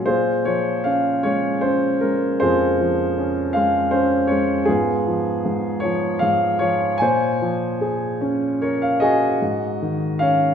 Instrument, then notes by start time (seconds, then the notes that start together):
grand piano
0.06 A#2 F4 G#4 C5
0.45 F3 C#5
0.84 C#4 F5
1.23 G#3 C#5
1.61 C#4 C5
2.01 G#3 A#4
2.40 F2 F4 G#4 C5
2.80 F3
3.18 C#4
3.53 G#3 F5
3.91 C#4 C5
4.27 G#3 C#5
4.65 G#2 B3 F4 G#4
5.07 F3
5.45 G#2
5.80 C#5
5.84 F3
6.19 G#2 F5
6.59 F3 C#5
6.98 A#2 C5 C#5 G#5
7.41 F3
7.81 G#4
8.21 C#4
8.62 A#4 C#5
8.82 F5
9.00 F#4 G#4 D#5 G#5
9.42 G#2
9.82 D#3
10.19 C#4 C#5 F5